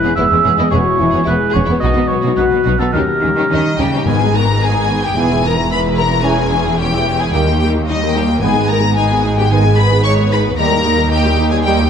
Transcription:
Already playing: E3 G#3 B3 E4 B4
0.03 E2 B3 C#4 G#4
0.15 E1 E2 B3 C#4 E4 G#4 E5
0.31 E2 G#3 B3 C#4
0.44 E1 E2 G#3 B3 C#4 G#4
0.58 E2 B3 E4 D#5
0.70 E1 E2 E3 B3 C#4 F#4 G#4 C#5
0.98 E1 E2 C#4 E4
1.02 G#3 B3
1.11 E2 B3 G#4
1.15 C#4
1.24 E1 E2 G#3 E4 G#4 B4
1.29 B3
1.51 E2 B3 G#4 C#5
1.56 E1 C#4
1.65 E2 B3 E4
1.70 B3
1.80 B1 B2 B3 F#4 D#5
1.84 D#4
1.93 B2 D#4
1.98 B3
2.08 B1 B2 F#3 B3 C#5
2.13 B3
2.21 B2 F#4
2.26 B3 D#4
2.36 B1 B2 B3 D#4 B4
2.51 B2 B3
2.55 B3
2.64 B1 B2 F#3 B3 D#4 F#4
2.79 B2 B3 D#4 A4
2.92 D#2 D#3 C#4 D#4 G4 A#4
3.22 D#2 D#3 G3 A#3 C#4
3.36 D#3 C#4 D#4 G4
3.49 D#2 D#3 C#4 D#4 D#5
3.54 C#4 D#4
3.78 D#2 C#3 G3 C#4 D#4 G4 G5
3.94 C#4 D#4
4.05 G#1 G#2 D#3 B3 G#4 G#5
4.21 G#3 D#4
4.33 D#3 B3 A#4 A#5
4.43 B4
4.49 G#3 D#4
4.61 D#3 B3 G#4 G#5
4.73 G#3 D#4
4.79 B4
4.88 D#3 B3
4.98 D#4
5.03 G#3 D#4 G4 G5
5.15 E1 E2 E3 B3 G#4 G#5
5.30 G#3 E4
5.34 E4
5.44 E3 B3 A#4 A#5
5.57 G#3 E4
5.71 E3 B3 B4 E5 B5
5.86 G#3 E4
5.98 E3 B3 A#4 A#5
6.06 B4
6.11 G#3 E4
6.23 E3 C#4 G#4 G#5
6.39 G#3 C#4 E4
6.54 E3 C#4
6.67 G#3 E4
6.78 E3 C#4 G4 C#5 G5
6.94 G#3 E4 G#4
7.07 E3 C#4
7.16 G#4 C#5
7.20 G#3 E4 G#5
7.33 D#2 D#3 G3 A#3 D#4 G4 G5
7.48 A#3 G4
7.53 D#4
7.61 G3 D#4 G4 G5
7.70 A#4
7.76 A#3 G4
7.88 G3 D#4 D#5
8.02 A#3 G4 A#4
8.14 G3 D#4 G4 G5
8.23 D#4
8.28 A#3 G4
8.41 G#1 G#2 D#3 G#3 B3 D#4 G#4 G#5
8.57 B3 G#4
8.69 G#3 D#4 A#4 A#5
8.78 B3 G#4
8.96 G#3 D#4 G#4 B4 G#5
9.11 B3 G#4
9.24 G#3 D#4
9.33 D#4
9.38 B3 G4 G#4 G5
9.49 D#3 G#3 B3 D#4 G#4 G#5
9.63 B3 G#4
9.68 B3
9.77 G#3 D#4 B4 B5
9.87 B3 G#4
9.92 G#4
10.04 G#3 D#4 B4 C#5 C#6
10.17 B3 G#4
10.22 G#4
10.31 G#3 D#4 B4 B5
10.40 D#4
10.45 B3 G#4
10.57 D#2 D#3 G3 A#3 D#4 A#4 A#5
10.72 G3 G4
10.76 D#4
10.85 A#3 D#4
10.94 A#4
10.98 G3 G4
11.11 A#3 D#4 G4 D#5 G5
11.25 G3 G4
11.30 A#4
11.39 A#3 D#4
11.49 G3 G4 G#4 G#5
11.63 D#3 G3 A#3 D#4 G4 G5
11.81 G3 D#4 G4

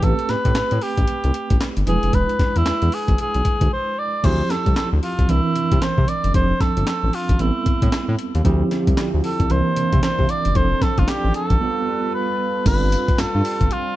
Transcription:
0.02 A1 A3 C4 G4 A4 B4, kick, closed hi-hat
0.19 closed hi-hat
0.29 A2 B4, snare, closed hi-hat
0.45 A2, kick, closed hi-hat
0.55 A2, snare, clap, closed hi-hat
0.71 A2, closed hi-hat
0.82 G4, open hi-hat
0.97 A1, kick, closed hi-hat
1.08 closed hi-hat
1.24 C2, closed hi-hat
1.34 closed hi-hat
1.50 A1, kick, closed hi-hat
1.60 snare, clap, closed hi-hat
1.77 G1, closed hi-hat
1.86 E1 F3 D4 E4 G#4 B4, closed hi-hat
1.92 G#3
2.03 F1, closed hi-hat
2.13 E1 B4, kick, closed hi-hat
2.29 closed hi-hat
2.39 E2, kick, snare, closed hi-hat
2.56 E2 E4, closed hi-hat
2.66 E2, snare, clap, closed hi-hat
2.82 E2, closed hi-hat
2.92 G#4, open hi-hat
3.08 G#1, kick, closed hi-hat
3.18 G#4, closed hi-hat
3.34 B1, closed hi-hat
3.45 kick, closed hi-hat
3.61 D2, kick, closed hi-hat
3.73 C5
3.99 D5
4.23 D2 E3 C4 E4 G4 C5, kick, closed hi-hat, crash
4.29 F3
4.50 A4, snare, closed hi-hat
4.66 C2, kick, closed hi-hat
4.76 A4, snare, clap, closed hi-hat
4.93 D2
5.03 F4, open hi-hat
5.19 C2, kick, closed hi-hat
5.28 C2 E3 C4 D4 E4 A#4, closed hi-hat
5.56 C3, closed hi-hat
5.72 C3, kick, closed hi-hat
5.82 C5, snare, clap, closed hi-hat
5.98 C3, kick
6.08 D5, closed hi-hat
6.24 F#1, closed hi-hat
6.33 F1 F3 C4 D4 A4 C5, kick, closed hi-hat
6.60 A4, kick, snare, closed hi-hat
6.77 G1, closed hi-hat
6.87 A4, snare, clap, closed hi-hat
7.03 A1
7.13 F4, open hi-hat
7.29 A1, kick, closed hi-hat
7.39 A1 G3 B3 C4 E4 A4, closed hi-hat
7.66 A2, kick, closed hi-hat
7.82 A2, kick, closed hi-hat
7.92 snare, clap, closed hi-hat
8.08 A2
8.19 closed hi-hat
8.35 D#2, closed hi-hat
8.44 D2 D3 F3 C4 E4 G4, kick, closed hi-hat
8.71 snare, closed hi-hat
8.87 C2, kick, closed hi-hat
8.97 snare, clap, closed hi-hat
9.14 D2
9.24 A4, open hi-hat
9.40 C2, kick, closed hi-hat
9.49 C2 C3 E3 A#3 C4 D4 E4 A#4 C5, closed hi-hat
9.76 C3, closed hi-hat
9.93 C3, kick, closed hi-hat
10.03 C5, snare, clap, closed hi-hat
10.19 C3, kick
10.29 D5, closed hi-hat
10.45 F#1, closed hi-hat
10.54 F1 F3 C4 D4 A4 C5, kick, closed hi-hat
10.81 A4, kick, snare, closed hi-hat
10.98 G1 F4, kick, closed hi-hat
11.08 G4, snare, clap, closed hi-hat
11.24 A1
11.34 A4, closed hi-hat
11.50 A1, kick, closed hi-hat
11.60 G3 B3 F4 A4 B4
12.14 B4
12.65 G1 G3 C4 D4 F4 A4 B4, kick, closed hi-hat, crash, tambourine
12.92 closed hi-hat, tambourine
13.08 kick, closed hi-hat
13.18 G2 A4, snare, clap, closed hi-hat, tambourine
13.35 G2
13.45 open hi-hat, tambourine
13.61 G1, kick, closed hi-hat
13.71 F4, closed hi-hat

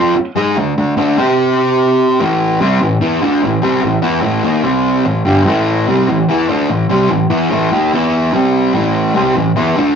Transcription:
Already playing: F3 C4 F4
0.16 muted distorted electric guitar stroke
0.36 G#3 D#4 G#4
0.57 D3 A3
0.78 D3 A3
0.97 D3 A3 D4
1.18 C4 G4 C5
2.20 A2 E3 A3
2.61 C3 G3 C4
2.81 A2 E3
3.01 E3 B3 E4
3.22 D3 A3 D4
3.43 A2 E3
3.62 C3 G3 C4
3.82 A2 E3
4.02 E3 B3 E4
4.21 A2 E3 A3
4.44 D#3 A#3 D#4
4.63 C3 G3 C4
5.05 A2 E3
5.25 G2 D3 G3
5.45 A2 E3 A3
5.87 C3 G3 C4
6.08 A2 E3
6.29 E3 B3 E4
6.49 D3 A3 D4
6.70 A2 E3
6.90 C3 G3 C4
7.10 A2 E3
7.30 E3 B3 E4
7.51 A2 E3 A3
7.72 D#3 A#3 D#4
7.93 E3 B3 E4
8.33 C3 G3 C4
8.73 A2 E3 A3
9.15 C3 G3 C4
9.36 A2 E3
9.56 E3 B3 E4
9.76 D3 A3 D4

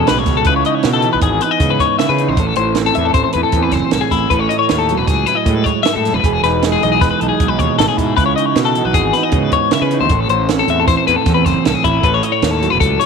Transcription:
Already playing: B2 E3 G#3 C#4 G#4
0.07 B1 A2 B4, snare, closed hi-hat
0.18 C#5
0.26 C#2 B2, kick, snare, closed hi-hat
0.37 A4
0.44 C#2 C#3 B4, kick, closed hi-hat
0.49 E4
0.56 C#5
0.65 D#4 D#5, closed hi-hat
0.75 C#5
0.83 B2 B3, snare, closed hi-hat
0.93 A4
1.02 E3 E4, closed hi-hat
1.13 B1 F#4 B4
1.21 G#1 G#4, kick, closed hi-hat
1.41 D#4 B4, closed hi-hat
1.51 D#5
1.60 G#2 C#3 B3, kick, closed hi-hat
1.70 B4
1.80 C#5, kick, closed hi-hat
1.99 C#3 E4 E5, snare, closed hi-hat
2.09 C#3 B4
2.18 D#4, closed hi-hat
2.28 B1 C5
2.37 A1 A2 A4, kick, closed hi-hat
2.47 A4
2.55 A1 C5, closed hi-hat
2.60 E4
2.75 snare, closed hi-hat
2.79 C4
2.86 A4
2.95 E2 E3 E5, closed hi-hat
2.99 A4
3.05 A4
3.14 A1 C5, kick, closed hi-hat
3.24 C5
3.33 E2 B4, closed hi-hat
3.38 E4
3.43 A4
3.52 E2, kick, closed hi-hat
3.57 E3 C4
3.63 B4
3.71 F#1 C5, kick, snare, closed hi-hat
3.91 C2 A2 A4, snare, closed hi-hat
4.01 G#4
4.11 A1 E4, kick, snare, closed hi-hat
4.30 A1 A2 A4 B4, kick, closed hi-hat
4.39 C#5
4.49 E4 D#5, closed hi-hat
4.59 C#5
4.69 D#2, snare, closed hi-hat
4.78 A4
4.89 F#3, closed hi-hat
4.97 E1 B4
5.07 C#2 G#4, kick, snare, closed hi-hat
5.26 E4 B4, closed hi-hat
5.35 D#5
5.46 A2 G#3, kick, closed hi-hat
5.55 B4
5.64 C#5, kick, closed hi-hat
5.83 E5, snare, closed hi-hat
5.87 G#2
5.93 A2 A4
6.05 F#2, snare, closed hi-hat
6.14 F#1 B4
6.23 E1 E2 G#4, kick, closed hi-hat
6.33 G#4
6.43 E1 D#4 B4, snare, closed hi-hat
6.62 G#3, snare, closed hi-hat
6.72 G#4
6.83 B1 E3 G#4 D#5, closed hi-hat
6.92 G#4
7.01 E1 B4, kick, snare, closed hi-hat
7.11 B4
7.20 B1 D#4 A4, closed hi-hat
7.29 G#4
7.40 B1 B2 G#3, kick, closed hi-hat
7.48 B4
7.59 D#2 C#5, kick, closed hi-hat
7.79 G#1 A2 A4, snare, closed hi-hat
7.88 G#4
7.97 G#2 B2 E4, kick, closed hi-hat
8.17 C#2 C#3 E4 B4, kick, closed hi-hat
8.26 C#5
8.36 D#4 D#5, closed hi-hat
8.46 C#5
8.55 B2 B3, snare, closed hi-hat
8.65 A4
8.75 E3 F#4, closed hi-hat
8.85 B1 B4
8.94 G#1 G#4, kick, closed hi-hat
9.13 B4, snare, closed hi-hat
9.17 D#4
9.23 D#5
9.32 G#2 C#3 B3, kick, closed hi-hat
9.44 B4
9.52 C#5, kick, closed hi-hat
9.71 C#3 E4 E5, snare, closed hi-hat
9.81 C#3 B4
9.91 D#4, closed hi-hat
10.00 E2 C5
10.09 A1 A2 A4, kick, closed hi-hat
10.20 A4
10.29 A1 E4 C5, closed hi-hat
10.49 C4, snare, closed hi-hat
10.59 A4
10.68 E2 E3 A4 E5, closed hi-hat
10.80 A4
10.88 A1 C5, kick, snare, closed hi-hat
10.97 C5
11.07 E2 E4 B4, closed hi-hat
11.16 A4
11.26 E2 E3 C4, kick, snare, closed hi-hat
11.34 B4
11.45 F#1 C5, kick, snare, closed hi-hat
11.65 C2 A2 A4, snare, closed hi-hat
11.74 G#4
11.84 A1 E4, kick, closed hi-hat
12.03 A1 A2 A4 B4, kick, closed hi-hat
12.14 C#5
12.23 E4 D#5, closed hi-hat
12.32 C#5
12.42 D#2, snare, closed hi-hat
12.51 A4
12.62 F#3, closed hi-hat
12.70 E1 B4
12.80 C#2 A4, kick, closed hi-hat
13.00 E4 C#5, closed hi-hat

